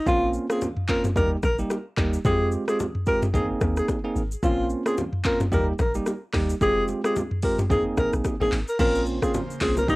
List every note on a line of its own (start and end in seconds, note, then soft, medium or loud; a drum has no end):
0.06 0.38 A#1 loud
0.06 0.46 A#3 medium
0.06 0.46 C4 medium
0.06 0.46 C#4 medium
0.06 0.46 F4 loud
0.06 0.31 F4 loud
0.06 kick loud
0.06 low conga medium
0.06 shaker medium
0.33 shaker medium
0.49 0.67 A#3 medium
0.49 0.67 C4 medium
0.49 0.67 C#4 medium
0.49 0.67 F4 medium
0.49 0.60 G#4 medium
0.49 cross-stick loud
0.49 shaker medium
0.61 high bongo medium
0.61 low conga medium
0.61 shaker medium
0.76 mid tom medium
0.88 1.08 A#3 medium
0.88 1.08 C4 medium
0.88 1.08 C#4 medium
0.88 1.09 F4 medium
0.88 1.03 A#4 medium
0.88 kick medium
0.88 clap medium
0.88 shaker medium
1.04 mid tom loud
1.04 high bongo medium
1.04 low bongo medium
1.04 shaker medium
1.16 1.36 D#2 loud
1.16 1.36 G3 medium
1.16 1.36 A#3 medium
1.16 1.36 D#4 medium
1.16 1.36 G4 loud
1.16 1.30 A#4 medium
1.16 kick loud
1.16 low conga medium
1.16 shaker medium
1.43 1.63 A#1 loud
1.43 1.57 A#4 medium
1.43 kick medium
1.43 cross-stick loud
1.43 low bongo medium
1.43 shaker medium
1.58 1.76 G3 medium
1.58 1.76 A#3 medium
1.58 1.76 D#4 medium
1.58 1.76 G4 medium
1.58 shaker medium
1.70 cross-stick medium
1.70 high bongo medium
1.70 shaker medium
1.97 2.18 D#2 medium
1.97 2.17 G3 medium
1.97 2.18 A#3 medium
1.97 2.18 D#4 medium
1.97 2.18 G4 medium
1.97 kick loud
1.97 cross-stick medium
1.97 clap medium
1.97 shaker soft
2.13 shaker medium
2.25 2.57 F2 loud
2.25 2.64 G#3 medium
2.25 2.64 C4 medium
2.25 2.64 F4 medium
2.25 2.64 G4 loud
2.25 2.49 G#4 loud
2.25 kick loud
2.25 low conga medium
2.25 shaker medium
2.52 shaker medium
2.68 2.85 G#3 medium
2.68 2.85 C4 medium
2.68 2.85 F4 medium
2.68 2.85 G4 medium
2.68 2.78 G#4 medium
2.68 cross-stick loud
2.68 shaker medium
2.79 high bongo medium
2.79 low conga medium
2.79 shaker medium
2.95 mid tom medium
3.06 3.27 G#3 medium
3.06 3.27 C4 medium
3.06 3.27 F4 medium
3.06 3.27 G4 medium
3.06 3.21 A#4 medium
3.06 kick medium
3.06 shaker medium
3.22 mid tom loud
3.22 high bongo medium
3.22 low bongo medium
3.22 shaker medium
3.34 3.54 G#1 loud
3.34 3.98 A#3 medium
3.34 3.98 C4 medium
3.34 3.98 D#4 medium
3.34 3.98 G#4 loud
3.34 3.48 G#4 medium
3.34 kick loud
3.34 low conga medium
3.34 shaker medium
3.61 3.81 D#2 loud
3.61 kick medium
3.61 cross-stick loud
3.61 low bongo medium
3.61 shaker medium
3.77 3.88 G#4 medium
3.77 cross-stick medium
3.77 shaker medium
3.88 kick medium
3.88 cross-stick medium
3.88 high bongo medium
3.88 shaker medium
4.04 4.21 A#3 medium
4.04 4.21 C4 medium
4.04 4.22 D#4 medium
4.04 4.22 G#4 medium
4.16 4.36 G#1 medium
4.16 shaker soft
4.32 shaker medium
4.43 4.75 A#1 loud
4.43 4.82 A#3 medium
4.43 4.82 C4 medium
4.43 4.82 C#4 medium
4.43 4.82 F4 loud
4.43 4.67 F4 loud
4.43 kick loud
4.43 low conga medium
4.43 shaker medium
4.70 shaker medium
4.86 5.03 A#3 medium
4.86 5.03 C4 medium
4.86 5.03 C#4 medium
4.86 5.03 F4 medium
4.86 4.97 G#4 medium
4.86 cross-stick loud
4.86 shaker medium
4.98 high bongo medium
4.98 low conga medium
4.98 shaker medium
5.13 mid tom medium
5.24 5.45 A#3 medium
5.24 5.45 C4 medium
5.24 5.45 C#4 medium
5.24 5.45 F4 medium
5.24 5.39 A#4 medium
5.24 kick medium
5.24 clap medium
5.24 shaker medium
5.40 mid tom loud
5.40 high bongo medium
5.40 low bongo medium
5.40 shaker medium
5.52 5.72 D#2 loud
5.52 5.72 G3 medium
5.52 5.72 A#3 medium
5.52 5.72 D#4 medium
5.52 5.72 G4 loud
5.52 5.66 A#4 medium
5.52 kick loud
5.52 low conga medium
5.52 shaker medium
5.79 5.99 A#1 loud
5.79 5.94 A#4 medium
5.79 kick medium
5.79 cross-stick medium
5.79 low bongo medium
5.79 shaker medium
5.95 6.12 G3 medium
5.95 6.12 A#3 medium
5.95 6.12 D#4 medium
5.95 6.12 G4 medium
5.95 shaker medium
6.06 cross-stick medium
6.06 high bongo medium
6.06 shaker medium
6.33 6.54 D#2 medium
6.33 6.54 G3 medium
6.33 6.54 A#3 medium
6.33 6.54 D#4 medium
6.33 6.54 G4 medium
6.33 kick loud
6.33 cross-stick medium
6.33 clap medium
6.33 open hi-hat medium
6.33 shaker soft
6.50 shaker medium
6.61 6.93 F1 loud
6.61 7.00 G#3 medium
6.61 7.00 C4 medium
6.61 7.01 F4 medium
6.61 7.01 G4 loud
6.61 6.85 G#4 loud
6.61 kick loud
6.61 low conga medium
6.61 shaker medium
6.88 low bongo medium
6.88 shaker soft
7.04 7.21 G#3 medium
7.04 7.21 C4 medium
7.04 7.22 F4 medium
7.04 7.22 G4 medium
7.04 7.15 G#4 medium
7.04 cross-stick loud
7.04 shaker medium
7.16 high bongo medium
7.16 low conga medium
7.16 shaker medium
7.31 mid tom medium
7.42 7.63 G#3 medium
7.42 7.63 C4 medium
7.42 7.63 F4 medium
7.42 7.63 G4 medium
7.42 7.57 A#4 medium
7.42 kick medium
7.42 open hi-hat medium
7.42 shaker medium
7.58 mid tom loud
7.58 high bongo medium
7.58 low bongo medium
7.58 shaker medium
7.70 7.82 G#1 loud
7.70 8.34 A#3 medium
7.70 8.34 C4 medium
7.70 8.34 D#4 medium
7.70 8.34 G#4 loud
7.70 7.84 G#4 medium
7.70 kick loud
7.70 low conga medium
7.70 shaker medium
7.97 8.09 G#1 loud
7.97 8.12 A#4 medium
7.97 kick medium
7.97 cross-stick loud
7.97 low bongo medium
7.97 shaker medium
8.13 8.22 A#1 medium
8.13 cross-stick medium
8.13 shaker medium
8.25 kick medium
8.25 cross-stick medium
8.25 high bongo medium
8.25 shaker medium
8.40 8.49 G#1 medium
8.40 8.58 A#3 medium
8.40 8.58 C4 medium
8.40 8.58 D#4 medium
8.40 8.58 G#4 medium
8.40 8.51 G#4 medium
8.40 low bongo medium
8.52 8.64 G#1 medium
8.52 clap medium
8.52 open hi-hat medium
8.52 shaker medium
8.68 8.78 A#4 medium
8.68 shaker medium
8.79 9.20 A#1 loud
8.79 9.87 C#3 medium
8.79 9.18 A#3 loud
8.79 9.87 A#3 medium
8.79 9.19 C4 medium
8.79 9.19 C#4 medium
8.79 9.19 F4 loud
8.79 9.03 A#4 loud
8.79 9.87 C5 medium
8.79 kick loud
8.79 crash loud
8.79 low conga medium
8.79 shaker medium
8.95 shaker medium
9.06 shaker medium
9.22 9.40 A#3 medium
9.22 9.40 C4 medium
9.22 9.40 C#4 medium
9.22 9.40 F4 medium
9.22 9.33 G#4 medium
9.22 kick loud
9.22 cross-stick loud
9.22 shaker medium
9.34 high bongo medium
9.34 low conga medium
9.34 shaker medium
9.51 shaker medium
9.61 9.90 C2 loud
9.61 9.81 A#3 medium
9.61 9.81 C4 medium
9.61 9.81 C#4 medium
9.61 9.81 F4 medium
9.61 9.75 G#4 medium
9.61 kick medium
9.61 clap medium
9.61 open hi-hat medium
9.61 shaker medium
9.77 9.88 A#4 medium
9.77 high bongo medium
9.77 low bongo medium
9.77 shaker medium
9.88 9.96 D#2 loud
9.88 9.96 D#3 medium
9.88 9.96 G3 loud
9.88 9.96 A#3 medium
9.88 9.96 D#4 medium
9.88 9.96 D#4 loud
9.88 9.96 G4 medium
9.88 9.96 G4 loud
9.88 9.96 A#4 medium
9.88 kick loud
9.88 low conga medium
9.88 shaker medium